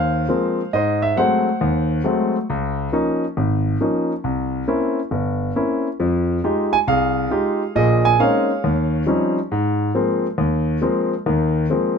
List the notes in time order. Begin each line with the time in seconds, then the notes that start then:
Already playing: D#2 C5 F5
0.29 F3 G#3 A#3 C4
0.73 G#2 C5 D#5
1.02 E5
1.16 F#3 G#3 A3 C4 C5 F#5
1.61 D#2
2.04 F#3 G#3 A3 C4
2.50 C#2
2.93 F3 A#3 C#4 D#4
3.37 G#1
3.81 F3 A#3 C#4 D#4
4.24 C2
4.68 A#3 C4 C#4 E4
5.11 G1
5.56 A#3 C4 C#4 E4
6.00 F2 F3
6.44 G#3 D#4 F4 G4
6.73 G#5
6.87 C2 G#4 F5
7.30 G#3 D#4 F4 G4
7.75 A#1 A#2 G#4 D#5
8.05 G#5
8.19 G#3 A#3 C4 C#4 D#4 C#5 F5
8.64 D#2
9.06 F3 G3 C4 C#4 D#4
9.52 G#2
9.95 F3 G#3 A#3 C4
10.38 D#2
10.81 F3 G#3 A#3 C4
11.26 D#2 D#3
11.70 F3 G#3 A#3 C4